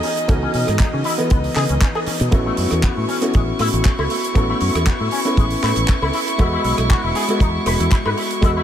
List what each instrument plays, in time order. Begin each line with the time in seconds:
Already playing: reed electric piano E3 B3 F#4 D#5, violin section D#4 D#5
0.03 clean electric guitar C#4, open hi-hat
0.17 closed hi-hat
0.28 fingered electric bass C#2, reed electric piano E3 B3 D#4 F#4, clean electric guitar C#4, kick, closed hi-hat, cowbell
0.43 clean electric guitar C#4
0.54 fingered electric bass B2, clean electric guitar C#4, open hi-hat
0.67 fingered electric bass G#2, cross-stick, closed hi-hat, cowbell
0.79 clean electric guitar D#4, kick, clap, closed hi-hat
0.94 fingered electric bass C#3, clean electric guitar C#4
1.04 clean electric guitar E4, open hi-hat
1.18 reed electric piano E3 B3 B4 D#5, closed hi-hat, cowbell
1.30 fingered electric bass C#2, clean electric guitar B3, kick, closed hi-hat
1.44 open hi-hat
1.55 fingered electric bass C#3, clean electric guitar G#4, cross-stick, clap, open hi-hat, cowbell
1.69 fingered electric bass C#2, clean electric guitar C#4, closed hi-hat
1.81 clean electric guitar C#4, kick, clap, closed hi-hat
1.95 clean electric guitar G#4, cowbell
2.06 clean electric guitar C#4, muted fingered electric bass stroke, open hi-hat
2.20 fingered electric bass B2, closed hi-hat
2.31 fingered electric bass A1, clean electric guitar A3, reed electric piano B3 C#4 E4 F#4, violin section E4 C#6, kick, closed hi-hat, cowbell
2.46 clean electric guitar A3
2.57 fingered electric bass F#2, clean electric guitar A3, open hi-hat
2.71 fingered electric bass E2, cross-stick, closed hi-hat, cowbell
2.83 clean electric guitar B3, kick, clap, closed hi-hat
2.97 fingered electric bass A2, clean electric guitar A3
3.09 clean electric guitar C#4, open hi-hat
3.21 reed electric piano B3 C#4 E4 F#4, closed hi-hat, cowbell
3.34 fingered electric bass A1, clean electric guitar G#3, kick, closed hi-hat
3.59 fingered electric bass A2, clean electric guitar E4, cross-stick, open hi-hat, cowbell
3.73 fingered electric bass A1, clean electric guitar A3, closed hi-hat
3.85 clean electric guitar A3, kick, clap, closed hi-hat
3.99 fingered electric bass C#2, clean electric guitar E4, cowbell
4.10 clean electric guitar A3, open hi-hat
4.24 closed hi-hat
4.35 fingered electric bass A1, clean electric guitar A3, reed electric piano B3 C#4 E4 F#4, kick, closed hi-hat, cowbell
4.50 clean electric guitar A3
4.61 fingered electric bass F#2, clean electric guitar A3, open hi-hat
4.75 fingered electric bass E2, cross-stick, closed hi-hat, cowbell
4.86 clean electric guitar B3, kick, clap, closed hi-hat
5.00 fingered electric bass A2, clean electric guitar A3
5.11 clean electric guitar C#4, open hi-hat
5.25 reed electric piano B3 C#4 E4 B4, closed hi-hat, cowbell
5.37 fingered electric bass A1, clean electric guitar G#3, kick, closed hi-hat
5.50 open hi-hat
5.63 fingered electric bass A2, clean electric guitar E4, cross-stick, clap, open hi-hat, cowbell
5.76 fingered electric bass A1, clean electric guitar A3, closed hi-hat
5.88 clean electric guitar A3, kick, clap, closed hi-hat
6.02 fingered electric bass C#2, clean electric guitar E4, cowbell
6.13 clean electric guitar E4, open hi-hat
6.28 closed hi-hat
6.38 fingered electric bass E2, reed electric piano G#3 B3 F#4 D#5, clean electric guitar E4, kick, closed hi-hat, cowbell
6.53 clean electric guitar E4
6.64 fingered electric bass B1, clean electric guitar E4, open hi-hat
6.78 fingered electric bass B1, cross-stick, closed hi-hat, cowbell
6.90 clean electric guitar F#4, kick, clap, closed hi-hat
7.04 fingered electric bass E1, clean electric guitar E4
7.15 clean electric guitar G#4, open hi-hat
7.28 reed electric piano G#3 B3 F#4 D#5, closed hi-hat, cowbell
7.40 fingered electric bass E2, clean electric guitar D#4, kick, closed hi-hat
7.66 fingered electric bass E1, clean electric guitar B4, cross-stick, open hi-hat, cowbell
7.80 fingered electric bass E2, clean electric guitar E4, closed hi-hat
7.92 clean electric guitar E4, kick, clap, closed hi-hat
8.06 fingered electric bass G#2, clean electric guitar B4, cowbell
8.17 clean electric guitar E4, open hi-hat
8.31 closed hi-hat
8.42 fingered electric bass E2, reed electric piano G#3 B3 F#4 D#5, clean electric guitar E4, kick, closed hi-hat, cowbell
8.57 clean electric guitar E4